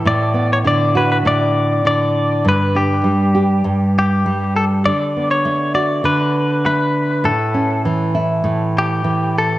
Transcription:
<<
  \new Staff \with { instrumentName = "Clean electric guitar" } { \time 4/4 \key d \major \tempo 4 = 100 d''8. cis''16 d''8 b'16 b'16 d''4 d''4 | b'8 g'2 g'4 a'8 | d''8. cis''8. d''8 b'4 b'4 | a'4 r4. g'4 a'8 | }
  \new Staff \with { instrumentName = "Nylon-string guitar" } { \clef bass \time 4/4 \key d \major a,8 b8 d8 fis'8 a,4 d4 | g,8 d'8 g8 g'8 g,4 g4 | d8 b8 a8 fis'8 d4 a4 | a,8 cis'8 e8 e'8 a,4 e4 | }
>>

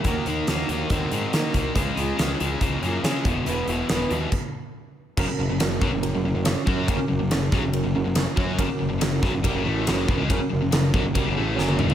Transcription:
<<
  \new Staff \with { instrumentName = "Reed electric piano" } { \time 4/4 \key fis \major \tempo 4 = 140 r1 | r1 | r1 | <cis' fis' ais'>4 <cis' fis' ais'>4 <cis' fis' ais'>8 <cis' fis' ais'>8 <cis' fis' cis''>4 |
<cis' fis' ais'>4 <cis' fis' gis'>4 <cis' fis' ais'>8 <cis' fis' ais'>8 <cis' fis' cis''>4 | <cis' fis' ais'>4 <cis' fis' ais'>4 <cis' fis' ais'>8 <cis' fis' ais'>8 <cis' fis' ais'>4 | <cis' fis' ais'>4 <cis' fis' ais'>4 <cis' fis' ais'>8 <cis' fis' gis'>8 <cis' fis' ais'>4 | }
  \new Staff \with { instrumentName = "Steel-string acoustic guitar" } { \time 4/4 \key fis \major <dis fis ais dis' fis'>8 <ais dis' fis'>8 <dis fis ais dis' fis'>8 <ais dis' fis'>8 <fis ais dis' fis'>8 <ais dis' fis'>8 <dis fis ais dis' fis'>8 <ais dis' fis'>8 | <cis gis cis' eis' gis'>8 <cis' eis' gis'>8 <cis gis cis' eis' gis'>8 <cis' eis' gis'>8 <gis cis' eis' gis'>8 <cis' eis' gis'>8 <cis gis cis' eis' gis'>8 <b e' fis'>8 | <e gis b e' fis'>8 <b e' fis'>8 <e gis b e' fis'>8 <b e' fis'>8 r2 | r1 |
r1 | r1 | r1 | }
  \new Staff \with { instrumentName = "Distorted electric guitar" } { \clef bass \time 4/4 \key fis \major <dis ais>8 <dis ais>8 <dis ais>8 <dis ais>8 <dis bis>8 <dis bis>8 <dis ais>8 <dis ais>8 | <cis gis>8 <cis gis>8 <cis gis>8 <cis gis>8 <cis ais>8 <cis ais>8 <cis gis>8 <e, b,>8 | <e, b,>8 <e, b,>8 <e, b,>8 <e, b,>8 r2 | <fis, cis>16 r16 <fis, cis>16 <fis, cis>16 <fis, cis>8 <b, fis>16 <fis, cis>8 <fis, cis>16 <fis, cis>16 <fis, cis>8 r16 <fis cis' fis'>8 |
<fis, cis>16 r16 <fis, cis>16 <fis, cis>16 <fis, cis>8 <b, fis>16 <fis, cis>8 <fis, cis>16 <fis, cis>16 <fis, cis>8 r16 <fis cis' fis'>8 | <fis, cis>16 r16 <fis, cis>16 <fis, cis>16 <fis, cis>8 <b, fis>16 <fis, cis>16 <bis, g>16 <fis, cis>16 <a, e a>8 <fis, cis fis>8 <e, b,>16 <cis gis>16 | <fis, cis>16 r16 <fis, cis>16 <fis, cis>16 <fis, cis>8 <b, fis>16 <fis, cis>16 <bis, g>16 <fis, cis>16 <a, e a>8 <fis, cis fis>8 <e, b,>16 <cis gis>16 | }
  \new Staff \with { instrumentName = "Picked electric bass" } { \clef bass \time 4/4 \key fis \major dis,8 dis,8 dis,8 dis,8 dis,8 gis,8 dis8 bis,,8 | cis,8 cis,8 cis,8 cis,8 cis,8 fis,8 cis8 e,,8 | e,,8 e,,8 e,,8 dis,8 r2 | fis,,16 r16 fis,,16 fis,,16 fis,,8 b,,16 fis,,8 fis,,16 fis,,16 fis,,8 r16 fis,8 |
fis,,16 r16 fis,,16 fis,,16 fis,,8 b,,16 fis,,8 fis,,16 fis,,16 fis,,8 r16 fis,8 | fis,,16 r16 fis,,16 fis,,16 fis,,8 b,,16 fis,,16 bis,,16 fis,,16 a,,8 fis,,8 e,,16 cis,16 | fis,,16 r16 fis,,16 fis,,16 fis,,8 b,,16 fis,,16 bis,,16 fis,,16 a,,8 fis,,8 e,,16 cis,16 | }
  \new DrumStaff \with { instrumentName = "Drums" } \drummode { \time 4/4 <hh bd>8 hh8 <hh sn>8 hh8 <hh bd>8 hh8 <hh sn>8 <hh bd>8 | <hh bd>8 hh8 <hh sn>8 hh8 <hh bd>8 hh8 <hh sn>8 <hh bd>8 | hh8 hh8 <hh sn>8 hh8 <cymc bd>4 r4 | <cymc bd>4 <rb sn>8 bd8 rb4 <rb sn>8 bd8 |
<bd rb>4 <rb sn>8 <bd sn>8 rb4 <rb sn>8 bd8 | <bd rb>4 <rb sn>8 <bd sn>8 <bd rb>4 <rb sn>8 bd8 | <bd rb>4 <rb sn>8 bd8 <bd rb>4 sn16 tommh16 toml16 tomfh16 | }
>>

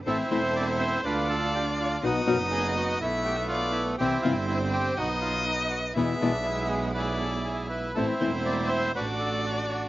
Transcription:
<<
  \new Staff \with { instrumentName = "Violin" } { \time 4/4 \key a \minor \tempo 4 = 121 c''2 d''2 | dis''2 e''4 d''4 | c''2 dis''2 | e''2 d''4. r8 |
c''2 d''2 | }
  \new Staff \with { instrumentName = "Bandoneon" } { \time 4/4 \key a \minor << { a'8 c''8 d''8 c''8 b'8 a'8 g'8 f'8 | fis'8 bes'8 gis'8 fis'8 e'8 g'8 f'8 e'8 | g'8 f'8 e'8 g'8 fis'8 f'8 dis'8 fis'8 | e'8 d'8 e'8 gis'8 b'8 a'8 gis'8 b'8 |
a'8 c''8 d''8 c''8 b'8 a'8 fis'8 fis'8 | } \\ { <c' e'>2 <d' f'>2 | <b dis'>2 <a b>2 | <c' e'>2 <b dis'>2 | <gis b>2 <e' gis'>2 |
<c' e'>2 <d' fis'>2 | } >> }
  \new Staff \with { instrumentName = "String section" } { \time 4/4 \key a \minor <c' e' a'>8 <c' e' a'>4. <d' f' a'>2 | <b dis' fis'>8 <b dis' fis'>4. <a b e'>2 | <g c' e'>8 <g c' e'>4. <fis b dis'>2 | <gis b e'>8 <gis b e'>2.~ <gis b e'>8 |
<a c' e'>8 <a c' e'>4. <a d' fis'>2 | }
  \new Staff \with { instrumentName = "Nylon-string guitar" } { \time 4/4 \key a \minor <e a c' e'>8 <e a c' e'>8 r2. | <b, fis b dis' fis'>8 <b, fis b dis' fis'>8 r2. | <c e g c' e'>8 <c e g c' e'>8 r2. | <b, e gis b e'>8 <b, e gis b e'>8 r2. |
<e a c' e'>8 <e a c' e'>8 r2. | }
  \new Staff \with { instrumentName = "Double bass" } { \clef bass \time 4/4 \key a \minor a,,8 e,,4. d,2 | b,,8 fis,,4. b,,2 | c,8 g,,4. b,,2 | e,8 b,,2.~ b,,8 |
a,,8 e,,4. a,,2 | }
>>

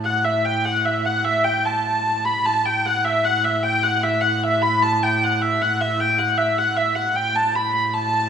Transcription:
<<
  \new Staff \with { instrumentName = "Hurdy-gurdy" } { \time 3/4 \key fis \phrygian \tempo 4 = 152 fis''8 e''8 g''8 fis''8 e''8 fis''8 | e''8 g''8 a''4. b''8 | a''8 g''8 fis''8 e''8 fis''8 e''8 | g''8 fis''8 e''8 fis''8 e''8 b''8 |
a''8 g''8 fis''8 e''8 fis''8 e''8 | g''8 fis''8 e''8 fis''8 e''8 fis''8 | g''8 a''8 b''4 a''4 | }
  \new Staff \with { instrumentName = "Viola da gamba" } { \clef bass \time 3/4 \key fis \phrygian a,2.~ | a,2. | a,2.~ | a,2.~ |
a,2.~ | a,2. | a,2. | }
>>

